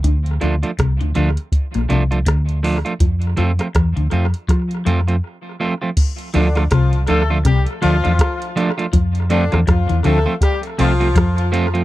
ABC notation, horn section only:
X:1
M:4/4
L:1/16
Q:"Swing 16ths" 1/4=81
K:Dm
V:1 name="Horn section"
z16 | z16 | z2 [D,D]2 [F,F]2 [A,A]2 [G,G] z [F,F]4 z2 | z2 [D,D]2 [F,F]2 [A,A]2 [G,G] z [F,F]4 z2 |]